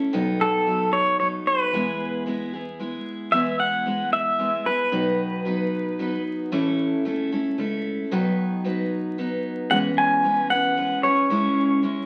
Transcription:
Already playing: A3 C#4 E4 A4
0.13 B1 B2 D#3 F#3 B3 D#4 A4
0.41 A4
0.67 F#3 B3 D#4 A4
0.93 C#5
1.19 F#3 B3 D#4 A4 C#5
1.47 B4
1.73 E2 E3 G#3 B3 E4 G#4
2.26 G#3 B3 E4 G#4
2.53 B3 E4 G#4
2.79 G#3 B3 E4 G#4
3.32 E2 E3 G#3 B3 E4 G#4 E5
3.60 F#5
3.86 G#3 B3 E4 G#4
4.13 E5
4.39 G#3 B3 E4 G#4
4.65 B3 E4 G#4 B4
4.92 B1 B2 D#3 F#3 B3 D#4 B4
5.45 F#3 B3 D#4 B4
5.99 F#3 B3 D#4 B4
6.52 A1 A2 E3 A3 C#4 E4 A4
7.05 D#2 A3 C#4 E4 A4
7.32 A3 C#4 E4 A4
7.58 C#2 A3 C#4 E4 A4
8.11 B1 B2 D#3 F#3 B3 D#4 B4
8.64 F#3 B3 D#4 B4
9.18 F#3 B3 D#4 B4
9.71 E2 E3 G#3 C#4 G#4 B4 F#5
9.98 G#5
10.23 G#3 C#4 G#4 B4
10.50 C#4 G#4 B4 F#5
10.77 G#3 C#4 G#4 B4
11.03 C#4 G#4 B4 C#5
11.30 C#2 C#3 G#3 C#4 E4 G#4
11.83 G#3 C#4 E4 G#4

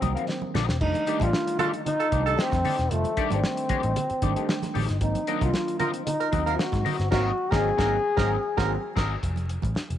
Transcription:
Already playing: C4
0.01 C2 D#3 F#3 A#3 C4 F#4 A#4 D#5, kick, closed hi-hat, muted conga, high conga
0.15 C4 F#4 A#4 F5, closed hi-hat
0.27 muted clean electric guitar stroke, snare, muted conga
0.42 muted clean electric guitar stroke, high conga
0.54 A#1 C4 F#4 A#4 D#5, snare, muted conga, low conga
0.68 E1, muted clean electric guitar stroke, snare
0.81 F1 D#3 G3 A3 D4 D#4, kick, crash
0.94 closed hi-hat, high conga
1.06 D#3 G3 A3 D4 D#4 G4 A4 D5, closed hi-hat, muted conga
1.20 A1 F4, kick, closed hi-hat, high conga
1.33 snare
1.47 muted clean electric guitar stroke, closed hi-hat
1.59 D#4 F4 G4 A4 D5, closed hi-hat, muted conga, high conga, low conga
1.74 muted clean electric guitar stroke, closed hi-hat
1.86 D#4, muted clean electric guitar stroke, closed hi-hat, muted conga, low conga
2.00 A4, muted clean electric guitar stroke, closed hi-hat
2.12 C2 D#3 G3 A3 C4 D#4 G4 A4 D5, kick, closed hi-hat, high conga
2.19 D4
2.26 D#4 G4 A4 D#5, closed hi-hat
2.38 C4, snare, muted conga
2.52 F2, muted clean electric guitar stroke, kick, snare, closed hi-hat, high conga
2.64 D#4 G4 A4 D5, open hi-hat, low conga
2.78 E1, muted clean electric guitar stroke, snare, closed hi-hat
2.90 F1 D#3 G3 A3 F4, closed hi-hat
3.04 closed hi-hat, high conga
3.16 D#3 G3 A3 D4 D#4 G4 A4 D5, kick, closed hi-hat, muted conga
3.31 G#1 C4, closed hi-hat, high conga
3.44 snare
3.57 muted clean electric guitar stroke, closed hi-hat
3.69 D#4 G4 A4 D5, muted picked electric bass stroke, kick, closed hi-hat, muted conga, high conga, low conga
3.83 A1, muted clean electric guitar stroke, closed hi-hat
3.96 muted clean electric guitar stroke, closed hi-hat, muted conga, low conga
4.09 muted clean electric guitar stroke, muted picked electric bass stroke, closed hi-hat
4.22 G#1 D#3 G3 A3 D4 D#4 G4 A4 D5, kick, closed hi-hat, muted conga, high conga
4.36 D#4 G4 A4 D#5, closed hi-hat
4.49 snare, muted conga
4.62 muted clean electric guitar stroke, snare, closed hi-hat, high conga
4.74 A1 D#4 G4 A4 D5, open hi-hat, low conga
4.88 G1, muted clean electric guitar stroke, snare, closed hi-hat
5.01 G#1 D#3 F#3 A#3 C4 D#4, kick, closed hi-hat, muted conga
5.15 closed hi-hat, high conga
5.27 D#3 F#3 A#3 C4 D4 F#4 A#4 D#5, closed hi-hat
5.41 C2 F4, kick, closed hi-hat, high conga
5.54 snare, muted conga
5.68 muted clean electric guitar stroke, closed hi-hat
5.79 C4 F4 F#4 A#4 D#5, closed hi-hat, muted conga, high conga, low conga
5.93 muted clean electric guitar stroke, closed hi-hat
6.06 D#4, muted clean electric guitar stroke, closed hi-hat, muted conga, low conga
6.20 A#4, muted clean electric guitar stroke, closed hi-hat
6.32 D#2 D#3 F#3 A#3 B3 C4 F#4 A#4 D#5, kick, closed hi-hat, muted conga, high conga
6.40 C4
6.46 C4 F#4 A#4 F5, closed hi-hat
6.59 F#4, snare
6.72 G#2, muted clean electric guitar stroke, kick, snare, closed hi-hat, high conga
6.85 C4 F#4 A#4 D#5, open hi-hat, muted conga, low conga
6.99 G1, muted clean electric guitar stroke, snare, closed hi-hat
7.11 G#1 D#3 F#3 A#3 C4 F#4 A#4 D#5, kick, snare, crash
7.51 G#1 D#3 F#3 A#3 C4 F#4 G#4 A#4 D#5, kick, snare
7.60 C4
7.77 G#1 D#3 F#3 A#3 C4 F#4 A#4 D#5, kick, snare
7.86 C4
8.16 G#1 D#3 F#3 A#3 C4 F#4 A#4 C5 D#5, kick, snare
8.25 C4
8.57 G#1 D#3 F#3 A#3 C4 F#4 A#4 C5, kick, snare
8.65 C4
8.96 G#1 C4 F#4 A#4 D#5, kick, snare, crash
9.23 F1, kick, closed hi-hat, muted conga
9.36 closed hi-hat, high conga
9.49 closed hi-hat
9.62 A1, kick, closed hi-hat, high conga
9.75 muted picked electric bass stroke, snare, muted conga
9.90 F1, closed hi-hat

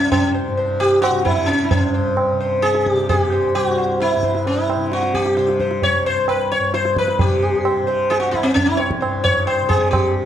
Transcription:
Already playing: C2 G2 C3 C#4
0.12 C#4, tabla na, tabla ge
0.34 C5
0.48 G2
0.57 C5
0.80 G4, tabla te
1.02 F#4, tabla na
1.10 C3
1.25 E4, tabla tin, tabla ge
1.46 C#4, tabla te
1.64 E4
1.71 G2 C#4 C5, tabla tin, tabla ge
1.94 C5
2.17 tabla na
2.33 C3
2.40 C5
2.62 G#4, tabla te
2.75 tabla te
2.86 G4, tabla ke
2.94 C3, tabla te
3.09 G#4, tabla tin, tabla ge
3.21 G4
3.32 C5
3.55 C2 G4, tabla na
3.67 F#4
3.78 C5
4.00 E4, tabla te
4.11 tabla te
4.16 G2
4.23 C5, tabla ke
4.35 tabla te
4.47 E4, tabla tin
4.69 C5, tabla na
4.76 C3
4.92 F#4, tabla te
5.03 tabla te
5.14 G4, tabla ke
5.26 tabla te
5.37 C3 C5, tabla te
5.49 tabla te
5.60 C5, tabla ke
5.71 tabla te
5.82 C#5, tabla tin, tabla ge
5.99 C2
6.06 C5
6.28 B4, tabla na
6.52 C#5
6.59 G2
6.74 C5, tabla te
6.85 tabla te
6.96 B4, tabla ke
7.08 tabla te
7.19 C3 G4, tabla tin, tabla ge
7.42 C5
7.65 C5, tabla na
7.82 C3
7.87 C5, tabla na
8.10 G#4, tabla te
8.20 F#4, tabla te
8.31 E4, tabla ke
8.41 C2 C4
8.46 tabla te
8.54 C#4, tabla tin, tabla ge
8.65 E4
8.77 C#5, tabla na
8.91 tabla ke
9.01 G2 C5, tabla na
9.24 C#5, tabla tin, tabla ge
9.47 C5, tabla na
9.62 C3
9.69 G#4, tabla tin, tabla ge
9.91 G4, tabla na, tabla ge
10.22 C3

